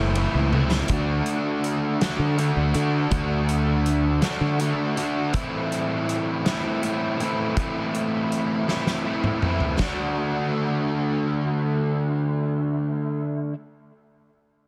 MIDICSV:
0, 0, Header, 1, 5, 480
1, 0, Start_track
1, 0, Tempo, 741656
1, 584, Time_signature, 6, 3, 24, 8
1, 9499, End_track
2, 0, Start_track
2, 0, Title_t, "Clean electric guitar"
2, 0, Program_c, 0, 27
2, 0, Note_on_c, 0, 72, 75
2, 317, Note_off_c, 0, 72, 0
2, 9499, End_track
3, 0, Start_track
3, 0, Title_t, "Overdriven electric guitar"
3, 0, Program_c, 1, 29
3, 0, Note_on_c, 1, 45, 91
3, 0, Note_on_c, 1, 52, 88
3, 0, Note_on_c, 1, 57, 98
3, 0, Note_on_c, 1, 60, 81
3, 0, Note_on_c, 1, 64, 89
3, 101, Note_off_c, 1, 45, 0
3, 107, Note_off_c, 1, 52, 0
3, 109, Note_on_c, 1, 45, 80
3, 110, Note_off_c, 1, 57, 0
3, 115, Note_off_c, 1, 60, 0
3, 115, Note_on_c, 1, 52, 83
3, 117, Note_off_c, 1, 64, 0
3, 117, Note_on_c, 1, 57, 88
3, 122, Note_on_c, 1, 60, 85
3, 125, Note_on_c, 1, 64, 90
3, 341, Note_off_c, 1, 45, 0
3, 348, Note_off_c, 1, 52, 0
3, 348, Note_on_c, 1, 45, 78
3, 351, Note_off_c, 1, 57, 0
3, 356, Note_on_c, 1, 52, 81
3, 357, Note_off_c, 1, 60, 0
3, 358, Note_off_c, 1, 64, 0
3, 359, Note_on_c, 1, 57, 85
3, 365, Note_on_c, 1, 60, 95
3, 366, Note_on_c, 1, 64, 99
3, 571, Note_off_c, 1, 45, 0
3, 575, Note_off_c, 1, 52, 0
3, 576, Note_off_c, 1, 57, 0
3, 579, Note_off_c, 1, 60, 0
3, 580, Note_off_c, 1, 64, 0
3, 591, Note_on_c, 1, 50, 88
3, 598, Note_on_c, 1, 57, 94
3, 601, Note_on_c, 1, 62, 95
3, 604, Note_on_c, 1, 66, 110
3, 1298, Note_off_c, 1, 50, 0
3, 1306, Note_off_c, 1, 57, 0
3, 1306, Note_on_c, 1, 50, 82
3, 1307, Note_off_c, 1, 62, 0
3, 1308, Note_on_c, 1, 57, 87
3, 1310, Note_off_c, 1, 66, 0
3, 1314, Note_on_c, 1, 62, 85
3, 1317, Note_on_c, 1, 66, 89
3, 1537, Note_off_c, 1, 50, 0
3, 1540, Note_off_c, 1, 62, 0
3, 1545, Note_off_c, 1, 57, 0
3, 1545, Note_on_c, 1, 50, 72
3, 1548, Note_on_c, 1, 57, 73
3, 1548, Note_on_c, 1, 62, 76
3, 1549, Note_off_c, 1, 66, 0
3, 1557, Note_on_c, 1, 66, 79
3, 1768, Note_off_c, 1, 50, 0
3, 1776, Note_on_c, 1, 50, 75
3, 1778, Note_off_c, 1, 62, 0
3, 1780, Note_off_c, 1, 57, 0
3, 1781, Note_off_c, 1, 66, 0
3, 1783, Note_on_c, 1, 57, 75
3, 1786, Note_on_c, 1, 62, 81
3, 1789, Note_on_c, 1, 66, 78
3, 2009, Note_off_c, 1, 50, 0
3, 2016, Note_off_c, 1, 62, 0
3, 2016, Note_on_c, 1, 50, 93
3, 2018, Note_off_c, 1, 57, 0
3, 2019, Note_off_c, 1, 66, 0
3, 2020, Note_on_c, 1, 57, 83
3, 2024, Note_on_c, 1, 62, 98
3, 2027, Note_on_c, 1, 66, 101
3, 2727, Note_off_c, 1, 50, 0
3, 2735, Note_off_c, 1, 62, 0
3, 2735, Note_on_c, 1, 50, 77
3, 2737, Note_off_c, 1, 57, 0
3, 2739, Note_off_c, 1, 66, 0
3, 2739, Note_on_c, 1, 57, 84
3, 2742, Note_on_c, 1, 62, 94
3, 2746, Note_on_c, 1, 66, 94
3, 2966, Note_off_c, 1, 50, 0
3, 2973, Note_on_c, 1, 50, 74
3, 2976, Note_off_c, 1, 62, 0
3, 2977, Note_off_c, 1, 57, 0
3, 2978, Note_off_c, 1, 66, 0
3, 2980, Note_on_c, 1, 57, 73
3, 2984, Note_on_c, 1, 62, 79
3, 2986, Note_on_c, 1, 66, 78
3, 3201, Note_off_c, 1, 50, 0
3, 3208, Note_on_c, 1, 50, 71
3, 3212, Note_off_c, 1, 62, 0
3, 3215, Note_off_c, 1, 57, 0
3, 3215, Note_off_c, 1, 66, 0
3, 3218, Note_on_c, 1, 57, 75
3, 3220, Note_on_c, 1, 62, 81
3, 3223, Note_on_c, 1, 66, 82
3, 3439, Note_off_c, 1, 50, 0
3, 3444, Note_off_c, 1, 62, 0
3, 3446, Note_off_c, 1, 66, 0
3, 3449, Note_on_c, 1, 45, 89
3, 3455, Note_on_c, 1, 52, 87
3, 3457, Note_off_c, 1, 57, 0
3, 3460, Note_on_c, 1, 57, 84
3, 3466, Note_on_c, 1, 60, 99
3, 3471, Note_on_c, 1, 64, 107
3, 4170, Note_off_c, 1, 45, 0
3, 4174, Note_off_c, 1, 52, 0
3, 4178, Note_on_c, 1, 45, 83
3, 4182, Note_on_c, 1, 52, 79
3, 4185, Note_off_c, 1, 57, 0
3, 4185, Note_off_c, 1, 60, 0
3, 4186, Note_off_c, 1, 64, 0
3, 4187, Note_on_c, 1, 57, 85
3, 4193, Note_on_c, 1, 60, 88
3, 4194, Note_on_c, 1, 64, 88
3, 4414, Note_off_c, 1, 45, 0
3, 4417, Note_off_c, 1, 52, 0
3, 4422, Note_on_c, 1, 45, 67
3, 4423, Note_off_c, 1, 64, 0
3, 4425, Note_off_c, 1, 57, 0
3, 4425, Note_on_c, 1, 52, 66
3, 4426, Note_off_c, 1, 60, 0
3, 4427, Note_on_c, 1, 57, 82
3, 4431, Note_on_c, 1, 64, 81
3, 4434, Note_on_c, 1, 60, 74
3, 4660, Note_off_c, 1, 45, 0
3, 4662, Note_off_c, 1, 52, 0
3, 4668, Note_on_c, 1, 45, 75
3, 4670, Note_on_c, 1, 52, 69
3, 4671, Note_off_c, 1, 57, 0
3, 4672, Note_off_c, 1, 64, 0
3, 4674, Note_off_c, 1, 60, 0
3, 4674, Note_on_c, 1, 57, 80
3, 4680, Note_on_c, 1, 64, 77
3, 4681, Note_on_c, 1, 60, 73
3, 4894, Note_off_c, 1, 45, 0
3, 4898, Note_off_c, 1, 57, 0
3, 4899, Note_off_c, 1, 52, 0
3, 4902, Note_on_c, 1, 45, 82
3, 4906, Note_on_c, 1, 57, 80
3, 4907, Note_off_c, 1, 60, 0
3, 4907, Note_on_c, 1, 52, 90
3, 4911, Note_off_c, 1, 64, 0
3, 4915, Note_on_c, 1, 60, 85
3, 4919, Note_on_c, 1, 64, 88
3, 5616, Note_off_c, 1, 45, 0
3, 5619, Note_off_c, 1, 52, 0
3, 5623, Note_on_c, 1, 45, 75
3, 5625, Note_off_c, 1, 57, 0
3, 5627, Note_off_c, 1, 60, 0
3, 5627, Note_on_c, 1, 52, 74
3, 5630, Note_off_c, 1, 64, 0
3, 5633, Note_on_c, 1, 57, 85
3, 5635, Note_on_c, 1, 60, 82
3, 5638, Note_on_c, 1, 64, 83
3, 5853, Note_off_c, 1, 45, 0
3, 5860, Note_off_c, 1, 52, 0
3, 5861, Note_on_c, 1, 45, 68
3, 5862, Note_off_c, 1, 57, 0
3, 5865, Note_off_c, 1, 60, 0
3, 5868, Note_off_c, 1, 64, 0
3, 5868, Note_on_c, 1, 52, 66
3, 5870, Note_on_c, 1, 57, 75
3, 5873, Note_on_c, 1, 60, 68
3, 5876, Note_on_c, 1, 64, 72
3, 6099, Note_off_c, 1, 45, 0
3, 6104, Note_off_c, 1, 57, 0
3, 6105, Note_off_c, 1, 52, 0
3, 6107, Note_on_c, 1, 45, 63
3, 6111, Note_off_c, 1, 64, 0
3, 6112, Note_on_c, 1, 52, 67
3, 6112, Note_on_c, 1, 57, 66
3, 6113, Note_off_c, 1, 60, 0
3, 6119, Note_on_c, 1, 64, 78
3, 6121, Note_on_c, 1, 60, 67
3, 6330, Note_off_c, 1, 45, 0
3, 6333, Note_off_c, 1, 52, 0
3, 6333, Note_off_c, 1, 57, 0
3, 6336, Note_off_c, 1, 64, 0
3, 6337, Note_off_c, 1, 60, 0
3, 6340, Note_on_c, 1, 50, 74
3, 6349, Note_on_c, 1, 57, 81
3, 6361, Note_on_c, 1, 62, 89
3, 6366, Note_on_c, 1, 66, 96
3, 8756, Note_off_c, 1, 50, 0
3, 8760, Note_off_c, 1, 57, 0
3, 8766, Note_off_c, 1, 62, 0
3, 8769, Note_off_c, 1, 66, 0
3, 9499, End_track
4, 0, Start_track
4, 0, Title_t, "Fingered electric bass"
4, 0, Program_c, 2, 33
4, 0, Note_on_c, 2, 30, 103
4, 162, Note_off_c, 2, 30, 0
4, 225, Note_on_c, 2, 37, 88
4, 523, Note_off_c, 2, 37, 0
4, 577, Note_on_c, 2, 38, 88
4, 779, Note_off_c, 2, 38, 0
4, 1418, Note_on_c, 2, 50, 81
4, 1618, Note_off_c, 2, 50, 0
4, 1661, Note_on_c, 2, 38, 71
4, 1760, Note_off_c, 2, 38, 0
4, 1779, Note_on_c, 2, 50, 78
4, 1978, Note_off_c, 2, 50, 0
4, 2013, Note_on_c, 2, 38, 91
4, 2713, Note_off_c, 2, 38, 0
4, 2853, Note_on_c, 2, 50, 77
4, 3054, Note_off_c, 2, 50, 0
4, 9499, End_track
5, 0, Start_track
5, 0, Title_t, "Drums"
5, 99, Note_on_c, 9, 51, 82
5, 163, Note_off_c, 9, 51, 0
5, 341, Note_on_c, 9, 48, 67
5, 405, Note_off_c, 9, 48, 0
5, 461, Note_on_c, 9, 38, 86
5, 526, Note_off_c, 9, 38, 0
5, 569, Note_on_c, 9, 42, 73
5, 580, Note_on_c, 9, 36, 97
5, 634, Note_off_c, 9, 42, 0
5, 644, Note_off_c, 9, 36, 0
5, 814, Note_on_c, 9, 42, 56
5, 879, Note_off_c, 9, 42, 0
5, 1061, Note_on_c, 9, 42, 55
5, 1125, Note_off_c, 9, 42, 0
5, 1302, Note_on_c, 9, 42, 71
5, 1305, Note_on_c, 9, 38, 92
5, 1367, Note_off_c, 9, 42, 0
5, 1369, Note_off_c, 9, 38, 0
5, 1542, Note_on_c, 9, 42, 56
5, 1607, Note_off_c, 9, 42, 0
5, 1775, Note_on_c, 9, 42, 60
5, 1840, Note_off_c, 9, 42, 0
5, 2014, Note_on_c, 9, 42, 70
5, 2017, Note_on_c, 9, 36, 96
5, 2079, Note_off_c, 9, 42, 0
5, 2082, Note_off_c, 9, 36, 0
5, 2256, Note_on_c, 9, 42, 60
5, 2321, Note_off_c, 9, 42, 0
5, 2497, Note_on_c, 9, 42, 57
5, 2562, Note_off_c, 9, 42, 0
5, 2730, Note_on_c, 9, 42, 68
5, 2733, Note_on_c, 9, 38, 89
5, 2795, Note_off_c, 9, 42, 0
5, 2797, Note_off_c, 9, 38, 0
5, 2974, Note_on_c, 9, 42, 62
5, 3039, Note_off_c, 9, 42, 0
5, 3218, Note_on_c, 9, 42, 58
5, 3282, Note_off_c, 9, 42, 0
5, 3452, Note_on_c, 9, 42, 70
5, 3456, Note_on_c, 9, 36, 97
5, 3517, Note_off_c, 9, 42, 0
5, 3521, Note_off_c, 9, 36, 0
5, 3702, Note_on_c, 9, 42, 52
5, 3766, Note_off_c, 9, 42, 0
5, 3941, Note_on_c, 9, 42, 57
5, 4005, Note_off_c, 9, 42, 0
5, 4179, Note_on_c, 9, 42, 70
5, 4181, Note_on_c, 9, 38, 90
5, 4244, Note_off_c, 9, 42, 0
5, 4246, Note_off_c, 9, 38, 0
5, 4420, Note_on_c, 9, 42, 56
5, 4484, Note_off_c, 9, 42, 0
5, 4661, Note_on_c, 9, 42, 49
5, 4726, Note_off_c, 9, 42, 0
5, 4897, Note_on_c, 9, 42, 63
5, 4899, Note_on_c, 9, 36, 90
5, 4962, Note_off_c, 9, 42, 0
5, 4963, Note_off_c, 9, 36, 0
5, 5142, Note_on_c, 9, 42, 52
5, 5206, Note_off_c, 9, 42, 0
5, 5384, Note_on_c, 9, 42, 50
5, 5449, Note_off_c, 9, 42, 0
5, 5620, Note_on_c, 9, 38, 45
5, 5685, Note_off_c, 9, 38, 0
5, 5738, Note_on_c, 9, 38, 50
5, 5803, Note_off_c, 9, 38, 0
5, 5978, Note_on_c, 9, 47, 60
5, 6043, Note_off_c, 9, 47, 0
5, 6099, Note_on_c, 9, 45, 68
5, 6163, Note_off_c, 9, 45, 0
5, 6215, Note_on_c, 9, 43, 60
5, 6280, Note_off_c, 9, 43, 0
5, 6335, Note_on_c, 9, 52, 66
5, 6337, Note_on_c, 9, 38, 78
5, 6338, Note_on_c, 9, 36, 74
5, 6400, Note_off_c, 9, 52, 0
5, 6402, Note_off_c, 9, 36, 0
5, 6402, Note_off_c, 9, 38, 0
5, 9499, End_track
0, 0, End_of_file